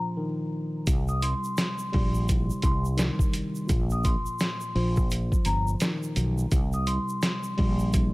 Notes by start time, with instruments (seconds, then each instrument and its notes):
Already playing: tine electric piano A#1 F3
0.17 tine electric piano D#3
0.87 fretless electric bass C2, tine electric piano C2, kick, closed hi-hat, shaker
1.08 vibraphone D#6, shaker
1.22 tine electric piano C2, vibraphone C6, closed hi-hat, shaker
1.44 shaker
1.57 snare, closed hi-hat, shaker
1.79 shaker
1.92 fretless electric bass A#1, tine electric piano G3, kick, open hi-hat
2.14 shaker
2.29 tine electric piano C2, kick, closed hi-hat, shaker
2.50 shaker
2.62 fretless electric bass C2, tine electric piano C2, vibraphone C6, kick, closed hi-hat, shaker
2.85 shaker
2.97 tine electric piano D#3, snare, closed hi-hat, shaker
3.19 kick, shaker
3.33 closed hi-hat, shaker
3.55 shaker
3.67 fretless electric bass A#1, tine electric piano A#2, kick, closed hi-hat, shaker
3.90 vibraphone D#6, shaker
4.04 tine electric piano A#1, vibraphone C6, kick, closed hi-hat, shaker
4.26 shaker
4.39 snare, closed hi-hat, shaker
4.61 shaker
4.75 fretless electric bass A#1, tine electric piano F3, open hi-hat
4.97 kick, shaker
5.11 closed hi-hat, shaker
5.32 kick, shaker
5.45 fretless electric bass G1, vibraphone A#5, closed hi-hat, shaker
5.67 shaker
5.80 tine electric piano D#3, snare, closed hi-hat, shaker
6.03 shaker
6.16 fretless electric bass B1, closed hi-hat, shaker
6.38 shaker
6.52 fretless electric bass C2, tine electric piano C2, kick, closed hi-hat, shaker
6.73 vibraphone D#6, shaker
6.86 tine electric piano C2, vibraphone C6, closed hi-hat, shaker
7.09 shaker
7.22 snare, closed hi-hat, shaker
7.43 shaker
7.57 fretless electric bass A#1, tine electric piano G3, kick, open hi-hat
7.79 shaker
7.93 tine electric piano C2, kick, closed hi-hat, shaker